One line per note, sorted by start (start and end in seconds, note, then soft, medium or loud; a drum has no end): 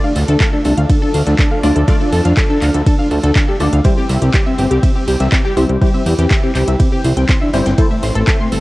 0.00 3.81 F3 medium
0.00 1.61 A3 loud
0.00 3.81 A3 medium
0.00 3.81 D4 medium
0.00 0.12 D4 medium
0.00 1.61 F4 medium
0.00 1.61 D5 loud
0.00 0.08 F5 medium
0.04 closed hi-hat soft
0.15 0.24 D2 medium
0.15 0.27 A4 medium
0.15 snare medium
0.15 closed hi-hat medium
0.15 open hi-hat loud
0.28 0.36 D2 medium
0.28 0.36 D4 medium
0.28 0.39 A4 loud
0.28 closed hi-hat medium
0.40 0.49 A4 loud
0.40 0.45 F5 medium
0.40 kick loud
0.40 snare loud
0.40 clap loud
0.40 closed hi-hat medium
0.40 ride medium
0.53 0.61 D4 medium
0.53 0.63 A4 medium
0.65 0.73 C2 loud
0.65 0.73 D4 medium
0.65 0.76 A4 loud
0.65 closed hi-hat medium
0.65 open hi-hat loud
0.77 0.86 D2 medium
0.77 0.86 A4 medium
0.77 0.82 F5 medium
0.77 closed hi-hat medium
0.90 0.98 D4 medium
0.90 1.00 A4 medium
0.90 kick loud
0.90 closed hi-hat medium
0.90 ride medium
1.02 1.10 D4 medium
1.02 1.12 A4 loud
1.14 1.23 D2 medium
1.14 1.23 A4 medium
1.14 1.19 F5 medium
1.14 closed hi-hat medium
1.14 open hi-hat loud
1.26 1.35 D2 medium
1.26 1.35 D4 medium
1.26 1.37 A4 medium
1.26 snare soft
1.26 closed hi-hat medium
1.39 1.47 D4 medium
1.39 1.49 A4 loud
1.39 kick loud
1.39 snare loud
1.39 clap loud
1.39 closed hi-hat medium
1.39 ride medium
1.51 1.59 A4 medium
1.51 1.55 F5 medium
1.63 1.72 D2 loud
1.63 1.85 A3 medium
1.63 1.72 D4 medium
1.63 1.85 F4 medium
1.63 1.74 A4 medium
1.63 1.85 D5 medium
1.63 closed hi-hat medium
1.63 open hi-hat loud
1.76 1.84 D2 medium
1.76 1.84 D4 medium
1.76 1.86 A4 loud
1.76 closed hi-hat medium
1.88 3.57 A3 loud
1.88 3.57 F4 medium
1.88 1.96 A4 medium
1.88 3.57 D5 loud
1.88 1.92 F5 medium
1.88 kick loud
1.88 closed hi-hat medium
1.88 ride medium
2.00 2.09 D4 medium
2.00 2.11 A4 medium
2.00 closed hi-hat soft
2.12 2.21 F2 loud
2.12 2.21 A4 medium
2.12 2.23 A4 loud
2.12 closed hi-hat medium
2.12 open hi-hat loud
2.25 2.33 F2 medium
2.25 2.33 D4 medium
2.25 2.29 F5 medium
2.25 closed hi-hat medium
2.25 closed hi-hat soft
2.37 2.46 A4 loud
2.37 2.48 A4 medium
2.37 kick loud
2.37 snare loud
2.37 clap loud
2.37 closed hi-hat medium
2.37 ride medium
2.50 2.58 D4 medium
2.50 2.60 A4 loud
2.62 2.70 D2 medium
2.62 2.70 D4 medium
2.62 2.66 F5 medium
2.62 clap soft
2.62 closed hi-hat medium
2.62 open hi-hat medium
2.74 2.82 D2 medium
2.74 2.82 A4 medium
2.74 2.85 A4 medium
2.74 closed hi-hat medium
2.74 closed hi-hat soft
2.86 2.95 D4 medium
2.86 2.97 A4 loud
2.86 kick loud
2.86 closed hi-hat medium
2.86 ride medium
2.99 3.07 D4 medium
2.99 3.03 F5 medium
3.10 3.19 D2 medium
3.10 3.22 A4 medium
3.10 3.19 A4 medium
3.10 closed hi-hat medium
3.10 open hi-hat loud
3.23 3.31 D2 medium
3.23 3.32 D4 medium
3.23 3.34 A4 loud
3.23 closed hi-hat medium
3.36 3.44 D4 medium
3.36 3.40 F5 medium
3.36 kick loud
3.36 snare loud
3.36 clap loud
3.36 closed hi-hat medium
3.36 ride medium
3.48 3.56 G4 medium
3.48 3.58 A4 medium
3.60 3.68 D2 loud
3.60 3.82 A3 medium
3.60 3.69 D4 medium
3.60 3.82 F4 medium
3.60 3.71 A4 loud
3.60 3.82 D5 medium
3.60 closed hi-hat medium
3.60 open hi-hat medium
3.73 3.81 D2 medium
3.73 3.81 D4 medium
3.73 3.77 F5 medium
3.73 closed hi-hat medium
3.84 8.60 E3 medium
3.84 5.54 G3 loud
3.84 7.74 G3 medium
3.84 5.80 C4 medium
3.84 5.54 E4 medium
3.84 3.95 G4 medium
3.84 3.93 G4 loud
3.84 5.54 C5 loud
3.84 kick loud
3.84 closed hi-hat medium
3.84 ride medium
3.97 4.05 C4 medium
3.97 4.08 G4 loud
3.97 closed hi-hat soft
4.09 4.18 C2 medium
4.09 4.14 E5 medium
4.09 snare medium
4.09 closed hi-hat medium
4.09 open hi-hat loud
4.22 4.30 C2 medium
4.22 4.30 C4 medium
4.22 4.32 G4 medium
4.22 closed hi-hat medium
4.33 4.45 G4 loud
4.33 4.42 G4 loud
4.33 kick loud
4.33 snare loud
4.33 clap loud
4.33 closed hi-hat medium
4.33 ride medium
4.46 4.55 C4 medium
4.46 4.51 E5 medium
4.58 4.67 G1 medium
4.58 4.67 C4 medium
4.58 4.69 G4 medium
4.58 closed hi-hat medium
4.58 open hi-hat medium
4.71 4.79 C2 medium
4.71 4.81 G4 loud
4.71 4.79 G4 loud
4.71 closed hi-hat medium
4.83 4.92 C4 medium
4.83 4.87 E5 medium
4.83 kick loud
4.83 closed hi-hat loud
4.83 closed hi-hat medium
4.83 ride medium
4.95 5.04 C4 medium
4.95 5.06 G4 medium
5.07 5.16 C2 medium
5.07 5.16 G4 loud
5.07 5.18 G4 loud
5.07 closed hi-hat medium
5.07 open hi-hat loud
5.20 5.28 C2 medium
5.20 5.28 C4 medium
5.20 5.24 E5 medium
5.20 snare soft
5.20 closed hi-hat medium
5.32 5.41 C4 medium
5.32 5.43 G4 medium
5.32 kick loud
5.32 snare loud
5.32 clap loud
5.32 closed hi-hat medium
5.32 ride medium
5.45 5.53 G4 medium
5.45 5.55 G4 loud
5.57 5.65 C2 loud
5.57 5.79 G3 medium
5.57 5.65 C4 medium
5.57 5.79 E4 medium
5.57 5.79 C5 medium
5.57 5.61 E5 medium
5.57 closed hi-hat medium
5.57 open hi-hat medium
5.69 5.77 C2 medium
5.69 5.78 C4 medium
5.69 5.80 G4 medium
5.69 closed hi-hat medium
5.81 7.51 G3 loud
5.81 7.51 E4 medium
5.81 5.90 G4 medium
5.81 5.92 G4 loud
5.81 7.51 C5 loud
5.81 kick loud
5.81 closed hi-hat medium
5.81 ride medium
5.94 6.02 C4 medium
5.94 5.98 E5 medium
5.94 closed hi-hat soft
6.06 6.14 E2 loud
6.06 6.14 G4 loud
6.06 6.17 G4 medium
6.06 closed hi-hat medium
6.06 open hi-hat loud
6.18 6.26 E2 medium
6.18 6.27 C4 medium
6.18 6.29 G4 loud
6.18 closed hi-hat medium
6.18 closed hi-hat soft
6.30 6.39 G4 medium
6.30 6.35 E5 medium
6.30 kick loud
6.30 snare loud
6.30 clap loud
6.30 closed hi-hat medium
6.30 closed hi-hat loud
6.30 ride medium
6.43 6.51 C4 medium
6.43 6.53 G4 medium
6.55 6.63 C2 medium
6.55 6.64 C4 medium
6.55 6.66 G4 loud
6.55 clap soft
6.55 closed hi-hat medium
6.55 open hi-hat loud
6.67 6.76 C2 medium
6.67 6.76 G4 medium
6.67 6.72 E5 medium
6.67 closed hi-hat medium
6.67 closed hi-hat soft
6.79 6.88 C4 medium
6.79 6.90 G4 medium
6.79 kick loud
6.79 closed hi-hat medium
6.79 ride medium
6.92 7.01 C4 medium
6.92 7.03 G4 loud
7.04 7.13 C2 medium
7.04 7.13 E4 loud
7.04 7.11 C5 medium
7.04 closed hi-hat medium
7.04 open hi-hat loud
7.17 7.25 C2 medium
7.17 7.25 C4 medium
7.17 7.24 G5 medium
7.17 closed hi-hat medium
7.28 7.37 C4 medium
7.28 7.36 C6 medium
7.28 kick loud
7.28 snare loud
7.28 clap loud
7.28 closed hi-hat medium
7.28 ride medium
7.41 7.50 D4 medium
7.41 7.48 E5 medium
7.53 7.62 G1 medium
7.53 7.75 G3 medium
7.53 7.62 C4 medium
7.53 7.75 E4 medium
7.53 7.61 G4 medium
7.53 7.75 C5 medium
7.53 snare loud
7.53 closed hi-hat medium
7.53 open hi-hat medium
7.66 7.74 G1 medium
7.66 7.74 C4 medium
7.66 7.73 G5 medium
7.66 snare loud
7.66 closed hi-hat medium
7.78 8.60 A3 loud
7.78 8.60 A3 medium
7.78 8.60 C4 medium
7.78 8.60 E4 medium
7.78 7.89 A4 loud
7.78 7.87 A4 loud
7.78 8.60 C5 loud
7.78 kick loud
7.78 closed hi-hat medium
7.78 ride medium
7.90 7.99 A3 medium
7.90 7.95 E5 medium
7.90 closed hi-hat soft
8.03 8.11 A1 medium
8.03 8.13 C6 medium
8.03 snare medium
8.03 closed hi-hat medium
8.03 open hi-hat loud
8.15 8.23 A1 medium
8.15 8.24 A3 medium
8.15 8.26 A4 loud
8.15 closed hi-hat medium
8.26 8.36 A4 medium
8.26 8.32 E5 medium
8.26 kick loud
8.26 snare loud
8.26 clap loud
8.26 closed hi-hat medium
8.26 closed hi-hat loud
8.26 ride medium
8.40 8.48 A3 medium
8.40 8.50 C6 medium
8.52 8.60 G1 medium
8.52 8.60 A3 medium
8.52 8.60 A4 loud
8.52 closed hi-hat medium
8.52 open hi-hat loud